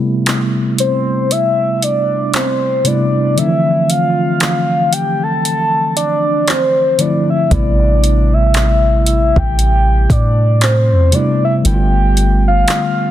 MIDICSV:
0, 0, Header, 1, 5, 480
1, 0, Start_track
1, 0, Key_signature, 0, "minor"
1, 0, Tempo, 1034483
1, 1565, Time_signature, 4, 2, 24, 8
1, 6083, End_track
2, 0, Start_track
2, 0, Title_t, "Soft synth lead"
2, 0, Program_c, 0, 80
2, 371, Note_on_c, 0, 72, 87
2, 611, Note_on_c, 0, 76, 98
2, 617, Note_off_c, 0, 72, 0
2, 851, Note_on_c, 0, 74, 90
2, 858, Note_off_c, 0, 76, 0
2, 1088, Note_on_c, 0, 72, 97
2, 1095, Note_off_c, 0, 74, 0
2, 1330, Note_on_c, 0, 74, 98
2, 1337, Note_off_c, 0, 72, 0
2, 1570, Note_on_c, 0, 76, 107
2, 1577, Note_off_c, 0, 74, 0
2, 1811, Note_on_c, 0, 77, 107
2, 1818, Note_off_c, 0, 76, 0
2, 2288, Note_on_c, 0, 79, 106
2, 2295, Note_off_c, 0, 77, 0
2, 2428, Note_on_c, 0, 81, 108
2, 2435, Note_off_c, 0, 79, 0
2, 2765, Note_off_c, 0, 81, 0
2, 2768, Note_on_c, 0, 74, 98
2, 3010, Note_on_c, 0, 72, 100
2, 3016, Note_off_c, 0, 74, 0
2, 3249, Note_on_c, 0, 74, 94
2, 3256, Note_off_c, 0, 72, 0
2, 3385, Note_off_c, 0, 74, 0
2, 3388, Note_on_c, 0, 76, 91
2, 3487, Note_on_c, 0, 74, 105
2, 3494, Note_off_c, 0, 76, 0
2, 3868, Note_on_c, 0, 76, 100
2, 3875, Note_off_c, 0, 74, 0
2, 4206, Note_off_c, 0, 76, 0
2, 4209, Note_on_c, 0, 76, 93
2, 4350, Note_on_c, 0, 79, 108
2, 4357, Note_off_c, 0, 76, 0
2, 4691, Note_on_c, 0, 74, 92
2, 4698, Note_off_c, 0, 79, 0
2, 4932, Note_on_c, 0, 72, 99
2, 4939, Note_off_c, 0, 74, 0
2, 5171, Note_on_c, 0, 74, 98
2, 5178, Note_off_c, 0, 72, 0
2, 5307, Note_off_c, 0, 74, 0
2, 5310, Note_on_c, 0, 76, 94
2, 5354, Note_off_c, 0, 76, 0
2, 5410, Note_on_c, 0, 79, 104
2, 5768, Note_off_c, 0, 79, 0
2, 5790, Note_on_c, 0, 77, 95
2, 6083, Note_off_c, 0, 77, 0
2, 6083, End_track
3, 0, Start_track
3, 0, Title_t, "Tine electric piano"
3, 0, Program_c, 1, 4
3, 0, Control_c, 1, 64, 127
3, 0, Note_on_c, 1, 48, 85
3, 0, Note_on_c, 1, 55, 80
3, 0, Note_on_c, 1, 57, 82
3, 0, Note_on_c, 1, 59, 75
3, 0, Note_on_c, 1, 64, 101
3, 391, Note_off_c, 1, 48, 0
3, 393, Note_off_c, 1, 55, 0
3, 395, Note_off_c, 1, 57, 0
3, 398, Note_off_c, 1, 59, 0
3, 400, Note_off_c, 1, 64, 0
3, 1317, Note_on_c, 1, 48, 73
3, 1322, Note_on_c, 1, 55, 63
3, 1326, Note_on_c, 1, 57, 65
3, 1330, Note_on_c, 1, 59, 63
3, 1335, Note_on_c, 1, 64, 78
3, 1516, Note_off_c, 1, 48, 0
3, 1519, Note_off_c, 1, 55, 0
3, 1521, Note_off_c, 1, 57, 0
3, 1523, Note_off_c, 1, 59, 0
3, 1525, Note_off_c, 1, 64, 0
3, 1557, Note_on_c, 1, 50, 70
3, 1562, Note_on_c, 1, 53, 64
3, 1566, Note_on_c, 1, 57, 66
3, 1571, Control_c, 1, 64, 0
3, 1571, Note_on_c, 1, 60, 68
3, 1576, Note_on_c, 1, 63, 64
3, 1605, Note_off_c, 1, 63, 0
3, 1605, Note_on_c, 1, 52, 76
3, 1666, Control_c, 1, 64, 127
3, 2311, Note_off_c, 1, 50, 0
3, 2314, Note_off_c, 1, 53, 0
3, 2316, Note_off_c, 1, 57, 0
3, 2318, Note_off_c, 1, 60, 0
3, 2336, Note_off_c, 1, 52, 0
3, 3238, Note_on_c, 1, 50, 68
3, 3243, Note_on_c, 1, 53, 66
3, 3248, Note_on_c, 1, 57, 62
3, 3252, Note_on_c, 1, 60, 64
3, 3257, Note_on_c, 1, 64, 76
3, 3437, Note_off_c, 1, 50, 0
3, 3439, Note_off_c, 1, 53, 0
3, 3441, Note_off_c, 1, 57, 0
3, 3444, Note_off_c, 1, 60, 0
3, 3446, Note_off_c, 1, 64, 0
3, 3478, Note_on_c, 1, 48, 71
3, 3482, Note_on_c, 1, 55, 67
3, 3487, Note_on_c, 1, 57, 64
3, 3491, Control_c, 1, 64, 0
3, 3492, Note_on_c, 1, 59, 64
3, 3496, Note_on_c, 1, 64, 81
3, 3584, Control_c, 1, 64, 127
3, 4232, Note_off_c, 1, 48, 0
3, 4234, Note_off_c, 1, 55, 0
3, 4237, Note_off_c, 1, 57, 0
3, 4239, Note_off_c, 1, 59, 0
3, 4241, Note_off_c, 1, 64, 0
3, 5158, Note_on_c, 1, 48, 74
3, 5163, Note_on_c, 1, 55, 66
3, 5167, Note_on_c, 1, 57, 68
3, 5171, Note_on_c, 1, 59, 61
3, 5176, Note_on_c, 1, 64, 75
3, 5357, Note_off_c, 1, 48, 0
3, 5359, Note_off_c, 1, 55, 0
3, 5361, Note_off_c, 1, 57, 0
3, 5363, Note_off_c, 1, 59, 0
3, 5366, Note_off_c, 1, 64, 0
3, 5397, Note_on_c, 1, 50, 71
3, 5402, Note_on_c, 1, 55, 64
3, 5406, Note_on_c, 1, 57, 68
3, 5411, Control_c, 1, 64, 0
3, 5411, Note_on_c, 1, 59, 65
3, 5415, Note_on_c, 1, 64, 67
3, 5445, Note_off_c, 1, 64, 0
3, 5446, Note_on_c, 1, 65, 81
3, 5499, Control_c, 1, 64, 127
3, 6083, Note_off_c, 1, 50, 0
3, 6083, Note_off_c, 1, 55, 0
3, 6083, Note_off_c, 1, 57, 0
3, 6083, Note_off_c, 1, 59, 0
3, 6083, Note_off_c, 1, 65, 0
3, 6083, End_track
4, 0, Start_track
4, 0, Title_t, "808-style bass"
4, 0, Program_c, 2, 38
4, 3485, Note_on_c, 2, 33, 109
4, 4326, Note_off_c, 2, 33, 0
4, 4344, Note_on_c, 2, 33, 97
4, 4671, Note_off_c, 2, 33, 0
4, 4685, Note_on_c, 2, 45, 106
4, 5066, Note_on_c, 2, 40, 96
4, 5073, Note_off_c, 2, 45, 0
4, 5161, Note_off_c, 2, 40, 0
4, 5406, Note_on_c, 2, 31, 112
4, 5867, Note_off_c, 2, 31, 0
4, 6083, End_track
5, 0, Start_track
5, 0, Title_t, "Drums"
5, 122, Note_on_c, 9, 42, 63
5, 128, Note_on_c, 9, 39, 119
5, 168, Note_off_c, 9, 42, 0
5, 175, Note_off_c, 9, 39, 0
5, 364, Note_on_c, 9, 42, 69
5, 411, Note_off_c, 9, 42, 0
5, 608, Note_on_c, 9, 42, 66
5, 654, Note_off_c, 9, 42, 0
5, 847, Note_on_c, 9, 42, 66
5, 893, Note_off_c, 9, 42, 0
5, 1084, Note_on_c, 9, 42, 61
5, 1090, Note_on_c, 9, 39, 111
5, 1130, Note_off_c, 9, 42, 0
5, 1136, Note_off_c, 9, 39, 0
5, 1322, Note_on_c, 9, 42, 68
5, 1368, Note_off_c, 9, 42, 0
5, 1566, Note_on_c, 9, 42, 59
5, 1613, Note_off_c, 9, 42, 0
5, 1808, Note_on_c, 9, 42, 62
5, 1854, Note_off_c, 9, 42, 0
5, 2043, Note_on_c, 9, 42, 63
5, 2050, Note_on_c, 9, 39, 114
5, 2090, Note_off_c, 9, 42, 0
5, 2096, Note_off_c, 9, 39, 0
5, 2286, Note_on_c, 9, 42, 69
5, 2332, Note_off_c, 9, 42, 0
5, 2529, Note_on_c, 9, 42, 68
5, 2576, Note_off_c, 9, 42, 0
5, 2769, Note_on_c, 9, 42, 66
5, 2815, Note_off_c, 9, 42, 0
5, 3005, Note_on_c, 9, 42, 61
5, 3011, Note_on_c, 9, 39, 102
5, 3051, Note_off_c, 9, 42, 0
5, 3057, Note_off_c, 9, 39, 0
5, 3242, Note_on_c, 9, 42, 72
5, 3289, Note_off_c, 9, 42, 0
5, 3486, Note_on_c, 9, 36, 97
5, 3486, Note_on_c, 9, 42, 54
5, 3532, Note_off_c, 9, 36, 0
5, 3532, Note_off_c, 9, 42, 0
5, 3729, Note_on_c, 9, 42, 65
5, 3775, Note_off_c, 9, 42, 0
5, 3963, Note_on_c, 9, 42, 61
5, 3970, Note_on_c, 9, 39, 117
5, 4010, Note_off_c, 9, 42, 0
5, 4016, Note_off_c, 9, 39, 0
5, 4206, Note_on_c, 9, 42, 66
5, 4252, Note_off_c, 9, 42, 0
5, 4344, Note_on_c, 9, 36, 86
5, 4391, Note_off_c, 9, 36, 0
5, 4449, Note_on_c, 9, 42, 68
5, 4495, Note_off_c, 9, 42, 0
5, 4685, Note_on_c, 9, 36, 87
5, 4688, Note_on_c, 9, 42, 68
5, 4732, Note_off_c, 9, 36, 0
5, 4734, Note_off_c, 9, 42, 0
5, 4924, Note_on_c, 9, 42, 65
5, 4930, Note_on_c, 9, 39, 110
5, 4970, Note_off_c, 9, 42, 0
5, 4977, Note_off_c, 9, 39, 0
5, 5161, Note_on_c, 9, 42, 68
5, 5207, Note_off_c, 9, 42, 0
5, 5405, Note_on_c, 9, 42, 55
5, 5452, Note_off_c, 9, 42, 0
5, 5647, Note_on_c, 9, 42, 64
5, 5693, Note_off_c, 9, 42, 0
5, 5882, Note_on_c, 9, 42, 66
5, 5888, Note_on_c, 9, 39, 118
5, 5928, Note_off_c, 9, 42, 0
5, 5935, Note_off_c, 9, 39, 0
5, 6083, End_track
0, 0, End_of_file